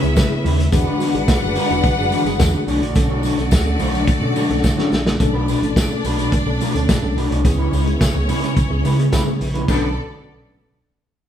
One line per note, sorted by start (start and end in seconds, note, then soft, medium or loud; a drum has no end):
0.00 0.13 C#2 medium
0.00 0.70 C#3 medium
0.00 0.70 B3 medium
0.00 0.15 B3 medium
0.00 0.68 C#4 loud
0.00 0.70 E4 medium
0.00 0.15 E4 medium
0.00 0.15 G#4 loud
0.00 0.68 B4 loud
0.00 0.68 E5 loud
0.00 muted clean electric guitar stroke medium
0.00 closed hi-hat soft
0.16 0.29 C#3 medium
0.16 0.29 G#3 medium
0.16 muted clean electric guitar stroke soft
0.16 kick loud
0.16 snare loud
0.16 closed hi-hat medium
0.16 tambourine medium
0.30 0.43 B3 medium
0.30 0.43 E4 medium
0.30 0.43 G#4 medium
0.30 muted clean electric guitar stroke soft
0.44 0.65 D#2 loud
0.44 0.61 G#3 medium
0.44 0.58 C#4 medium
0.44 0.50 E4 soft
0.44 0.57 E4 medium
0.44 0.49 G#4 soft
0.44 0.57 B4 loud
0.44 open hi-hat medium
0.58 muted clean electric guitar stroke medium
0.58 closed hi-hat medium
0.72 0.83 E1 loud
0.72 2.66 D3 medium
0.72 2.66 G#3 medium
0.72 2.64 D4 medium
0.72 0.85 D4 loud
0.72 0.85 F#4 medium
0.72 2.66 F#4 medium
0.72 0.85 G#4 loud
0.72 2.64 B4 loud
0.72 2.64 F#5 loud
0.72 muted clean electric guitar stroke soft
0.72 kick loud
0.72 closed hi-hat medium
0.72 tambourine medium
0.85 0.98 G#3 medium
0.85 0.98 D4 medium
0.85 0.99 F#4 medium
0.85 0.99 B4 medium
0.99 1.13 E3 medium
0.99 1.13 G#3 medium
0.99 1.13 B3 medium
0.99 1.13 D4 medium
0.99 1.13 F#4 medium
0.99 1.12 B4 medium
0.99 open hi-hat medium
0.99 tambourine medium
1.14 1.25 G#1 loud
1.14 1.27 D4 medium
1.14 1.27 F#4 medium
1.14 1.27 G#4 medium
1.14 muted clean electric guitar stroke soft
1.14 closed hi-hat soft
1.28 muted clean electric guitar stroke soft
1.28 kick loud
1.28 snare loud
1.28 closed hi-hat medium
1.28 tambourine loud
1.42 1.53 F#1 loud
1.42 1.55 D4 medium
1.42 1.55 F#4 medium
1.42 1.55 G#4 medium
1.42 muted clean electric guitar stroke medium
1.55 1.70 G#3 medium
1.55 1.69 D4 medium
1.55 1.69 F#4 medium
1.55 1.69 B4 medium
1.55 open hi-hat medium
1.55 tambourine medium
1.70 1.81 E1 loud
1.70 1.83 E3 medium
1.70 1.83 G#3 medium
1.70 1.83 B3 medium
1.70 1.83 D4 medium
1.70 1.83 F#4 medium
1.70 1.83 B4 medium
1.70 closed hi-hat medium
1.84 muted clean electric guitar stroke soft
1.84 kick loud
1.84 closed hi-hat medium
1.84 tambourine soft
1.97 2.08 F#1 medium
1.97 2.11 D4 medium
1.97 2.11 F#4 medium
1.97 2.11 G#4 medium
1.97 muted clean electric guitar stroke soft
2.11 2.26 E3 medium
2.11 2.29 G#3 medium
2.11 2.25 B3 medium
2.11 2.25 D4 medium
2.11 2.25 F#4 medium
2.11 2.24 B4 loud
2.11 open hi-hat medium
2.11 tambourine medium
2.25 2.36 F#1 medium
2.25 2.39 D4 medium
2.25 2.39 F#4 medium
2.25 2.39 G#4 loud
2.25 muted clean electric guitar stroke soft
2.25 closed hi-hat soft
2.39 2.50 E2 loud
2.39 2.53 E3 medium
2.39 2.53 B3 medium
2.39 muted clean electric guitar stroke soft
2.39 kick loud
2.39 snare loud
2.39 closed hi-hat medium
2.39 tambourine medium
2.53 2.67 D4 medium
2.53 2.67 F#4 medium
2.53 2.67 G#4 medium
2.53 muted clean electric guitar stroke medium
2.67 2.78 B1 loud
2.67 5.17 D3 medium
2.67 5.16 A3 loud
2.67 2.81 A3 medium
2.67 5.17 A3 medium
2.67 5.17 D4 medium
2.67 2.81 D4 medium
2.67 2.74 D4 soft
2.67 5.16 F#4 medium
2.67 2.80 F#4 medium
2.67 2.74 A4 soft
2.67 2.81 C#5 loud
2.67 5.16 D5 loud
2.67 open hi-hat medium
2.67 tambourine soft
2.81 2.92 A#1 medium
2.81 2.94 A3 medium
2.81 2.95 D4 medium
2.81 2.95 F#4 medium
2.81 2.95 D5 medium
2.81 closed hi-hat medium
2.95 3.27 B1 loud
2.95 3.09 C#4 medium
2.95 3.09 D4 medium
2.95 3.09 A4 loud
2.95 muted clean electric guitar stroke soft
2.95 kick loud
2.95 closed hi-hat medium
2.95 tambourine medium
3.09 3.22 A3 medium
3.09 3.22 D4 medium
3.09 3.23 F#4 medium
3.09 3.24 C#5 medium
3.23 3.37 B2 medium
3.23 3.37 F#3 medium
3.23 3.37 A3 medium
3.23 3.37 D4 medium
3.23 3.37 F#4 medium
3.23 3.36 C#5 medium
3.23 open hi-hat medium
3.23 tambourine medium
3.37 3.48 B1 medium
3.37 3.51 C#4 medium
3.37 3.51 D4 medium
3.37 3.51 A4 medium
3.37 muted clean electric guitar stroke medium
3.37 closed hi-hat soft
3.51 3.73 D2 loud
3.51 muted clean electric guitar stroke medium
3.51 kick loud
3.51 snare loud
3.51 closed hi-hat medium
3.51 tambourine medium
3.65 3.78 C#4 medium
3.65 3.79 D4 medium
3.65 3.79 A4 medium
3.65 muted clean electric guitar stroke soft
3.79 4.01 B1 loud
3.79 3.93 A3 medium
3.79 3.93 D4 loud
3.79 3.93 F#4 loud
3.79 3.92 C#5 loud
3.79 open hi-hat medium
3.79 tambourine medium
3.93 4.07 B2 medium
3.93 4.07 F#3 medium
3.93 4.06 A3 medium
3.93 4.06 D4 medium
3.93 4.07 F#4 medium
3.93 4.07 C#5 medium
3.93 closed hi-hat medium
4.07 muted clean electric guitar stroke soft
4.07 muted fingered electric bass stroke medium
4.07 kick loud
4.07 closed hi-hat medium
4.07 tambourine soft
4.21 4.32 B2 loud
4.21 4.35 C#4 medium
4.21 4.35 D4 medium
4.21 4.35 A4 medium
4.21 muted clean electric guitar stroke medium
4.35 4.49 B2 medium
4.35 4.49 F#3 medium
4.35 4.53 A3 medium
4.35 4.49 D4 medium
4.35 4.48 F#4 loud
4.35 4.48 C#5 loud
4.35 open hi-hat medium
4.35 tambourine medium
4.49 4.60 B1 loud
4.49 4.63 C#4 medium
4.49 4.63 D4 medium
4.49 4.63 A4 medium
4.49 muted clean electric guitar stroke soft
4.49 closed hi-hat medium
4.64 4.77 B2 medium
4.64 4.77 F#3 medium
4.64 muted clean electric guitar stroke soft
4.64 kick loud
4.64 snare medium
4.64 tambourine medium
4.77 4.90 A3 medium
4.77 4.91 C#4 medium
4.77 4.90 D4 medium
4.77 4.91 D4 medium
4.77 4.91 F#4 medium
4.77 4.91 A4 medium
4.77 4.91 C#5 medium
4.77 snare medium
4.91 5.13 A#1 loud
4.91 4.98 D4 soft
4.91 4.98 A4 medium
4.91 muted clean electric guitar stroke soft
4.91 snare medium
4.91 tambourine soft
5.05 muted clean electric guitar stroke soft
5.05 snare loud
5.19 5.52 B1 loud
5.19 7.42 B2 medium
5.19 7.42 A3 medium
5.19 5.33 C#4 medium
5.19 7.40 D4 loud
5.19 7.42 D4 medium
5.19 5.33 D4 medium
5.19 5.33 A4 loud
5.19 7.40 D5 loud
5.19 muted clean electric guitar stroke medium
5.19 kick loud
5.19 closed hi-hat medium
5.19 tambourine medium
5.33 5.47 A3 medium
5.33 5.47 D4 medium
5.33 5.48 F#4 medium
5.33 5.48 B4 loud
5.48 5.61 B2 soft
5.48 5.61 F#3 medium
5.48 5.61 A3 medium
5.48 5.62 D4 medium
5.48 5.61 F#4 medium
5.48 5.61 B4 medium
5.48 open hi-hat medium
5.48 tambourine medium
5.62 5.83 A1 medium
5.62 5.75 C#4 medium
5.62 5.75 D4 medium
5.62 5.75 A4 medium
5.62 muted clean electric guitar stroke soft
5.62 closed hi-hat soft
5.76 muted clean electric guitar stroke soft
5.76 kick loud
5.76 snare loud
5.76 closed hi-hat medium
5.76 tambourine loud
5.90 6.03 C#4 medium
5.90 6.03 D4 medium
5.90 6.03 A4 medium
5.90 muted clean electric guitar stroke soft
6.04 6.25 B1 medium
6.04 6.18 A3 medium
6.04 6.18 D4 medium
6.04 6.18 F#4 loud
6.04 6.17 B4 loud
6.04 open hi-hat medium
6.04 tambourine medium
6.18 6.31 B2 medium
6.18 6.31 F#3 medium
6.18 6.31 A3 medium
6.18 6.32 D4 medium
6.18 6.32 F#4 medium
6.18 6.32 B4 medium
6.18 closed hi-hat medium
6.32 muted clean electric guitar stroke soft
6.32 kick loud
6.32 closed hi-hat medium
6.32 tambourine soft
6.46 6.57 B1 medium
6.46 6.59 C#4 medium
6.46 6.59 D4 medium
6.46 6.60 A4 medium
6.46 muted clean electric guitar stroke soft
6.61 6.73 B2 medium
6.61 6.73 F#3 medium
6.61 6.80 A3 medium
6.61 6.75 D4 loud
6.61 6.74 F#4 loud
6.61 6.74 B4 medium
6.61 open hi-hat medium
6.61 tambourine medium
6.74 6.85 D2 loud
6.74 6.87 C#4 medium
6.74 6.87 D4 medium
6.74 6.88 A4 medium
6.74 muted clean electric guitar stroke soft
6.74 closed hi-hat medium
6.89 7.01 B2 medium
6.89 7.01 F#3 medium
6.89 muted clean electric guitar stroke soft
6.89 kick loud
6.89 snare loud
6.89 closed hi-hat medium
6.89 tambourine medium
7.02 7.13 B1 loud
7.02 7.15 C#4 medium
7.02 7.15 D4 medium
7.02 7.16 A4 medium
7.02 muted clean electric guitar stroke soft
7.17 7.27 B1 loud
7.17 7.31 A3 medium
7.17 7.22 D4 soft
7.17 7.30 D4 medium
7.17 7.30 F#4 medium
7.17 7.22 A4 soft
7.17 7.30 B4 medium
7.17 open hi-hat medium
7.30 7.45 C2 medium
7.30 7.44 A3 medium
7.30 7.44 D4 medium
7.30 7.44 F#4 medium
7.30 7.44 C#5 medium
7.30 closed hi-hat medium
7.44 7.66 C#2 loud
7.44 9.67 C#3 medium
7.44 7.57 B3 medium
7.44 9.67 B3 medium
7.44 9.65 C#4 medium
7.44 7.58 E4 medium
7.44 9.67 E4 medium
7.44 7.58 G#4 loud
7.44 9.65 C#5 loud
7.44 muted clean electric guitar stroke soft
7.44 kick loud
7.44 closed hi-hat medium
7.44 tambourine medium
7.58 7.71 G#3 medium
7.58 7.72 C#4 medium
7.58 7.72 E4 medium
7.58 7.73 B4 medium
7.72 7.93 C#2 loud
7.72 7.85 C#3 medium
7.72 7.86 G#3 medium
7.72 7.86 C#4 medium
7.72 7.85 E4 medium
7.72 7.85 B4 medium
7.72 open hi-hat medium
7.72 tambourine medium
7.86 7.99 B3 medium
7.86 7.99 E4 medium
7.86 8.00 G#4 medium
7.86 muted clean electric guitar stroke soft
7.86 closed hi-hat medium
7.99 muted clean electric guitar stroke soft
7.99 kick loud
7.99 snare loud
7.99 closed hi-hat medium
7.99 tambourine loud
8.14 8.31 C#2 medium
8.14 8.28 B3 medium
8.14 8.28 E4 medium
8.14 8.28 G#4 medium
8.14 muted clean electric guitar stroke medium
8.28 8.50 C#3 medium
8.28 8.42 G#3 medium
8.28 8.41 C#4 medium
8.28 8.41 E4 medium
8.28 8.40 B4 loud
8.28 open hi-hat medium
8.28 tambourine medium
8.42 8.56 C#3 medium
8.42 8.56 G#3 medium
8.42 8.54 G#3 medium
8.42 8.55 C#4 medium
8.42 8.55 E4 medium
8.42 8.55 B4 medium
8.42 closed hi-hat medium
8.56 muted clean electric guitar stroke soft
8.56 kick loud
8.56 closed hi-hat medium
8.56 tambourine soft
8.70 8.81 C#2 loud
8.70 8.83 B3 medium
8.70 8.83 E4 medium
8.70 8.83 G#4 medium
8.70 muted clean electric guitar stroke soft
8.84 9.05 C#3 medium
8.84 8.98 C#3 medium
8.84 9.01 G#3 medium
8.84 8.98 G#3 medium
8.84 8.98 C#4 medium
8.84 8.98 E4 medium
8.84 8.97 B4 loud
8.84 open hi-hat medium
8.84 tambourine soft
8.98 9.12 B3 medium
8.98 9.12 E4 medium
8.98 9.12 G#4 medium
8.98 muted clean electric guitar stroke soft
8.98 closed hi-hat medium
9.12 9.26 C#3 soft
9.12 9.29 G#3 medium
9.12 9.26 G#3 medium
9.12 9.26 C#4 medium
9.12 9.25 E4 medium
9.12 9.25 B4 loud
9.12 kick loud
9.12 snare loud
9.12 closed hi-hat medium
9.12 tambourine medium
9.26 9.40 B3 medium
9.26 9.40 E4 medium
9.26 9.40 G#4 medium
9.26 muted clean electric guitar stroke medium
9.40 9.61 A#1 loud
9.40 9.47 E4 soft
9.40 9.47 G#4 soft
9.40 muted clean electric guitar stroke soft
9.40 open hi-hat medium
9.40 tambourine soft
9.54 9.67 G#3 medium
9.54 9.68 C#4 medium
9.54 9.68 E4 medium
9.54 9.68 B4 medium
9.54 closed hi-hat medium
9.68 9.95 B1 loud
9.68 9.95 D3 medium
9.68 9.85 A3 medium
9.68 9.94 B3 medium
9.68 9.89 C#4 medium
9.68 9.85 D4 medium
9.68 9.90 D4 medium
9.68 9.85 F#4 medium
9.68 9.95 A4 medium
9.68 9.90 A4 medium
9.68 9.85 B4 medium
9.68 9.95 D5 medium
9.68 kick loud
9.68 crash medium
9.68 tambourine medium